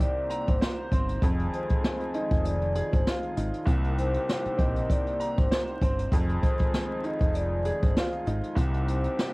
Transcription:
0.00 0.60 C2 medium
0.00 1.20 C3 medium
0.00 0.87 D#3 medium
0.00 1.20 A#3 medium
0.00 0.87 C4 medium
0.00 0.91 C4 medium
0.00 1.20 D#4 medium
0.00 0.87 G4 medium
0.00 0.45 D5 medium
0.00 kick medium
0.00 closed hi-hat medium
0.30 1.22 A#5 medium
0.30 closed hi-hat medium
0.47 0.59 G1 medium
0.47 0.60 C5 medium
0.47 kick loud
0.47 closed hi-hat medium
0.61 1.22 C5 loud
0.61 snare loud
0.92 1.16 G1 medium
0.92 1.23 C4 medium
0.92 kick loud
0.92 closed hi-hat medium
1.09 closed hi-hat medium
1.22 1.47 F1 loud
1.22 3.06 F2 medium
1.22 3.65 D#3 medium
1.22 3.32 F3 medium
1.22 3.65 G#3 medium
1.22 3.32 D#4 medium
1.22 3.65 F4 medium
1.22 3.32 G#4 loud
1.22 kick loud
1.22 closed hi-hat medium
1.39 closed hi-hat soft
1.53 2.11 C5 medium
1.53 closed hi-hat medium
1.69 kick medium
1.69 closed hi-hat medium
1.84 snare loud
2.00 closed hi-hat soft
2.14 3.36 D#4 medium
2.14 2.42 D#5 medium
2.14 closed hi-hat medium
2.31 2.80 F1 medium
2.31 kick loud
2.31 closed hi-hat medium
2.44 2.89 D5 medium
2.44 closed hi-hat medium
2.61 closed hi-hat soft
2.75 3.67 G#4 medium
2.75 closed hi-hat medium
2.92 3.04 G1 medium
2.92 3.19 C5 medium
2.92 kick loud
2.92 closed hi-hat medium
3.07 3.69 F4 loud
3.07 snare loud
3.23 closed hi-hat soft
3.37 3.50 G#1 medium
3.37 3.67 D#4 medium
3.37 closed hi-hat medium
3.54 closed hi-hat medium
3.66 5.50 C2 medium
3.66 4.16 C2 loud
3.66 6.10 C3 medium
3.66 5.78 D#3 medium
3.66 6.10 A#3 medium
3.66 5.78 C4 medium
3.66 6.10 D#4 loud
3.66 5.78 G4 medium
3.66 kick loud
3.66 closed hi-hat medium
3.84 closed hi-hat soft
3.98 4.56 C5 medium
3.98 closed hi-hat medium
4.14 closed hi-hat medium
4.29 snare loud
4.45 muted fingered electric bass stroke soft
4.45 closed hi-hat soft
4.57 4.84 A#1 medium
4.57 5.81 C4 medium
4.57 4.86 D#5 medium
4.57 kick loud
4.57 closed hi-hat medium
4.76 closed hi-hat soft
4.90 5.34 D5 medium
4.90 kick medium
4.90 closed hi-hat medium
5.06 closed hi-hat soft
5.20 6.12 A#5 medium
5.20 closed hi-hat medium
5.36 5.49 G1 medium
5.36 5.49 C5 medium
5.36 kick loud
5.36 closed hi-hat medium
5.51 6.12 C5 loud
5.51 snare loud
5.67 closed hi-hat soft
5.81 6.06 G1 medium
5.81 6.12 C4 medium
5.81 kick loud
5.81 closed hi-hat medium
5.99 closed hi-hat medium
6.12 6.37 F1 loud
6.12 7.96 F2 loud
6.12 8.54 D#3 medium
6.12 8.22 F3 medium
6.12 8.55 G#3 medium
6.12 8.22 D#4 medium
6.12 8.55 F4 medium
6.12 8.22 G#4 medium
6.12 kick loud
6.12 closed hi-hat medium
6.29 closed hi-hat soft
6.42 7.00 C5 medium
6.42 kick loud
6.42 closed hi-hat medium
6.59 kick loud
6.59 closed hi-hat medium
6.74 snare loud
7.04 8.25 D#4 medium
7.04 7.31 D#5 medium
7.04 closed hi-hat medium
7.21 7.70 F1 medium
7.21 kick loud
7.21 closed hi-hat soft
7.34 7.79 D5 medium
7.34 closed hi-hat medium
7.65 8.57 G#4 medium
7.65 closed hi-hat medium
7.82 7.94 G1 medium
7.82 8.09 C5 medium
7.82 kick loud
7.82 closed hi-hat medium
7.97 8.58 F4 loud
7.97 snare loud
8.12 closed hi-hat soft
8.27 8.40 G#1 medium
8.27 8.57 D#4 medium
8.27 closed hi-hat medium
8.43 closed hi-hat medium
8.55 9.34 C2 medium
8.55 9.06 C2 loud
8.55 9.34 C3 medium
8.55 9.34 D#3 medium
8.55 9.34 A#3 medium
8.55 9.34 C4 medium
8.55 9.34 D#4 loud
8.55 9.34 G4 medium
8.55 kick loud
8.55 closed hi-hat medium
8.74 closed hi-hat soft
8.88 9.34 C5 medium
8.88 closed hi-hat medium
9.04 closed hi-hat medium
9.19 snare loud

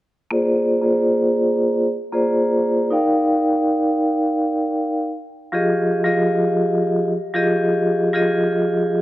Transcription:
0.30 0.78 A#3 medium
0.30 0.78 F4 medium
0.30 0.78 G#4 medium
0.30 0.79 C5 medium
0.30 0.79 D5 loud
0.81 1.86 A#3 medium
0.81 1.86 F4 medium
0.81 1.87 G#4 medium
0.81 1.87 C5 medium
0.81 1.87 D5 loud
2.12 2.86 A#3 medium
2.12 2.87 F4 medium
2.12 2.87 G#4 medium
2.12 2.87 C5 medium
2.12 2.88 D5 loud
2.90 5.04 D#4 medium
2.90 5.04 A#4 medium
2.90 5.04 D5 medium
2.90 5.04 F5 medium
2.90 5.05 G5 medium
5.52 6.00 F3 medium
5.52 6.00 F4 medium
5.52 6.00 G4 medium
5.52 6.00 G#4 medium
5.52 6.01 D#5 loud
6.04 7.08 F3 medium
6.04 7.09 F4 medium
6.04 7.09 G4 medium
6.04 7.09 G#4 medium
6.04 7.09 D#5 loud
7.34 8.08 F3 medium
7.34 8.08 F4 medium
7.34 8.09 G4 medium
7.34 8.09 G#4 medium
7.34 8.09 D#5 loud
8.13 9.02 F3 medium
8.13 9.02 F4 medium
8.13 9.02 G4 medium
8.13 9.02 G#4 medium
8.13 9.02 D#5 medium

